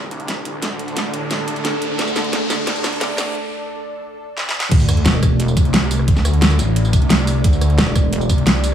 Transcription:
0.00 4.68 A3 medium
0.00 3.35 D4 medium
0.00 4.68 D4 medium
0.00 3.35 A4 medium
0.00 4.68 D5 medium
0.00 3.35 A5 medium
0.00 riser medium
0.11 0.61 C2 loud
0.11 closed hi-hat medium
0.20 closed hi-hat soft
0.28 snare medium
0.28 closed hi-hat medium
0.45 closed hi-hat medium
0.62 0.95 D2 loud
0.62 snare medium
0.62 closed hi-hat medium
0.79 closed hi-hat medium
0.88 closed hi-hat soft
0.96 1.12 D2 medium
0.96 snare medium
0.96 closed hi-hat loud
1.13 1.46 A1 medium
1.13 closed hi-hat medium
1.31 snare medium
1.31 closed hi-hat medium
1.48 1.97 C2 medium
1.48 closed hi-hat medium
1.56 closed hi-hat soft
1.65 snare medium
1.65 closed hi-hat medium
1.82 closed hi-hat medium
1.99 2.32 D2 loud
1.99 snare medium
1.99 closed hi-hat medium
2.07 tambourine soft
2.16 snare medium
2.16 closed hi-hat medium
2.16 tambourine medium
2.24 closed hi-hat soft
2.33 2.83 E1 loud
2.33 snare medium
2.33 closed hi-hat medium
2.50 snare medium
2.50 closed hi-hat medium
2.50 tambourine medium
2.67 snare medium
2.67 closed hi-hat medium
2.76 tambourine soft
2.84 3.34 C2 loud
2.84 snare medium
2.84 closed hi-hat medium
2.84 tambourine medium
2.93 closed hi-hat soft
3.01 snare medium
3.01 closed hi-hat medium
3.18 snare medium
3.18 open hi-hat medium
3.18 tambourine medium
4.37 snare medium
4.49 snare medium
4.60 snare medium
4.71 5.04 D2 loud
4.71 8.74 A3 medium
4.71 8.74 D4 medium
4.71 8.74 D5 medium
4.71 kick loud
4.71 closed hi-hat loud
4.71 crash loud
4.71 sub drop medium
4.80 tambourine soft
4.89 cross-stick soft
4.89 closed hi-hat medium
4.89 tambourine medium
4.97 closed hi-hat soft
5.06 5.55 E1 medium
5.06 snare loud
5.06 closed hi-hat medium
5.14 cross-stick medium
5.23 kick loud
5.23 cross-stick medium
5.23 closed hi-hat medium
5.23 tambourine medium
5.40 closed hi-hat medium
5.48 tambourine soft
5.57 6.07 C2 loud
5.57 kick loud
5.57 closed hi-hat medium
5.57 tambourine medium
5.65 closed hi-hat soft
5.74 snare loud
5.74 closed hi-hat loud
5.91 open hi-hat medium
5.91 tambourine medium
5.99 cross-stick soft
6.08 6.41 D2 loud
6.08 kick loud
6.08 closed hi-hat loud
6.16 snare soft
6.16 tambourine soft
6.25 cross-stick soft
6.25 closed hi-hat medium
6.25 tambourine medium
6.33 closed hi-hat soft
6.42 6.58 D2 loud
6.42 snare loud
6.42 closed hi-hat medium
6.51 cross-stick soft
6.51 closed hi-hat soft
6.51 tambourine soft
6.59 6.92 A1 loud
6.59 closed hi-hat medium
6.59 tambourine medium
6.76 closed hi-hat medium
6.85 tambourine soft
6.93 7.43 C2 medium
6.93 kick loud
6.93 closed hi-hat medium
6.93 tambourine medium
7.02 closed hi-hat soft
7.10 snare loud
7.10 closed hi-hat loud
7.27 open hi-hat medium
7.27 tambourine medium
7.44 7.77 D2 loud
7.44 kick loud
7.44 closed hi-hat medium
7.53 tambourine soft
7.61 cross-stick soft
7.61 closed hi-hat medium
7.61 tambourine medium
7.70 closed hi-hat soft
7.78 8.28 E1 loud
7.78 snare loud
7.78 closed hi-hat medium
7.87 cross-stick soft
7.95 kick loud
7.95 cross-stick medium
7.95 closed hi-hat medium
7.95 tambourine medium
8.13 closed hi-hat medium
8.21 tambourine soft
8.29 8.74 C2 medium
8.29 kick loud
8.29 closed hi-hat medium
8.29 tambourine medium
8.38 closed hi-hat soft
8.47 snare loud
8.47 closed hi-hat medium
8.64 open hi-hat medium
8.64 tambourine medium

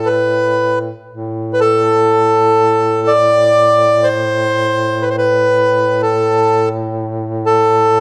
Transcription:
0.00 0.92 A2 soft
0.06 0.79 B4 medium
1.09 8.00 A2 soft
1.53 1.60 B4 medium
1.60 3.12 A4 medium
3.07 4.08 D5 medium
4.04 5.05 C5 medium
5.02 5.09 B4 medium
5.10 5.16 C5 medium
5.18 6.02 B4 medium
6.02 6.69 A4 medium
7.46 8.00 A4 loud

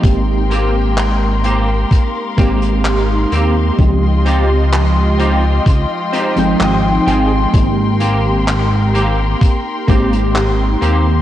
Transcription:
0.02 1.85 G#1 loud
0.02 2.32 G#3 medium
0.02 2.32 A#3 medium
0.02 2.32 C4 medium
0.02 2.33 D#4 medium
0.02 2.33 G4 medium
0.02 3.75 A#4 medium
0.02 1.89 G5 medium
0.02 11.22 C6 medium
0.02 kick loud
0.02 closed hi-hat medium
0.50 0.74 A#3 medium
0.50 0.75 C4 medium
0.50 0.75 G4 loud
0.50 closed hi-hat medium
0.98 clap loud
0.98 closed hi-hat medium
1.44 1.68 A#3 medium
1.44 1.68 C4 medium
1.44 1.69 G4 medium
1.44 closed hi-hat medium
1.91 3.77 F5 medium
1.91 kick loud
1.91 closed hi-hat medium
2.37 3.26 G#1 medium
2.37 3.72 G#3 medium
2.37 3.73 A#3 medium
2.37 2.62 A#3 medium
2.37 3.73 C4 medium
2.37 2.62 C4 medium
2.37 3.74 D#4 medium
2.37 2.62 G4 loud
2.37 3.74 G4 medium
2.37 kick loud
2.37 closed hi-hat medium
2.62 closed hi-hat medium
2.85 clap loud
2.85 closed hi-hat medium
3.31 3.71 D#2 medium
3.31 3.55 A#3 medium
3.31 3.56 C4 medium
3.31 3.56 G4 medium
3.31 closed hi-hat medium
3.77 5.60 C#2 loud
3.77 6.07 F3 medium
3.77 6.07 G#3 medium
3.77 6.08 C4 medium
3.77 6.08 D#4 medium
3.77 7.50 F4 medium
3.77 6.08 G4 medium
3.77 7.50 D#5 medium
3.77 11.22 G5 medium
3.77 kick loud
3.77 closed hi-hat medium
4.25 4.49 C4 medium
4.25 4.50 D#4 medium
4.25 4.50 F4 medium
4.25 4.50 G4 loud
4.25 closed hi-hat medium
4.72 clap loud
4.72 closed hi-hat medium
5.19 5.43 C4 medium
5.19 5.43 D#4 medium
5.19 5.43 F4 medium
5.19 5.43 G4 medium
5.19 closed hi-hat medium
5.66 5.86 C#2 medium
5.66 kick loud
5.66 closed hi-hat medium
6.12 6.37 C4 medium
6.12 6.37 D#4 medium
6.12 6.37 F4 medium
6.12 6.37 G4 medium
6.12 6.57 C5 medium
6.12 closed hi-hat medium
6.36 6.55 G#1 soft
6.36 7.48 F3 medium
6.36 7.48 G#3 medium
6.36 7.48 C4 medium
6.36 7.49 D#4 medium
6.36 7.49 G5 loud
6.36 closed hi-hat medium
6.60 6.99 G#1 medium
6.60 7.04 D#5 medium
6.60 clap loud
6.60 closed hi-hat medium
7.07 7.46 G#1 medium
7.07 7.30 C4 medium
7.07 7.31 D#4 medium
7.07 7.31 F4 medium
7.07 7.31 G#4 loud
7.07 7.50 G5 medium
7.07 closed hi-hat medium
7.53 9.35 G#1 medium
7.53 9.82 G#3 medium
7.53 9.82 A#3 medium
7.53 9.83 C4 medium
7.53 9.83 D#4 medium
7.53 9.84 G4 medium
7.53 11.22 A#4 medium
7.53 kick loud
7.53 closed hi-hat medium
8.00 8.24 A#3 medium
8.00 8.25 C4 medium
8.00 8.25 G4 medium
8.00 closed hi-hat medium
8.48 clap loud
8.48 closed hi-hat medium
8.94 9.18 A#3 medium
8.94 9.18 C4 medium
8.94 9.19 G4 medium
8.94 closed hi-hat medium
9.41 kick loud
9.41 closed hi-hat medium
9.87 10.76 G#1 medium
9.87 11.22 G#3 medium
9.87 10.12 A#3 medium
9.87 11.22 A#3 medium
9.87 10.12 C4 medium
9.87 11.22 C4 medium
9.87 11.22 D#4 medium
9.87 10.12 G4 loud
9.87 11.22 G4 medium
9.87 kick loud
9.87 closed hi-hat medium
10.13 closed hi-hat soft
10.35 clap loud
10.35 closed hi-hat medium
10.81 11.21 D#2 medium
10.81 11.05 A#3 medium
10.81 11.06 C4 medium
10.81 11.06 G4 loud
10.81 closed hi-hat medium

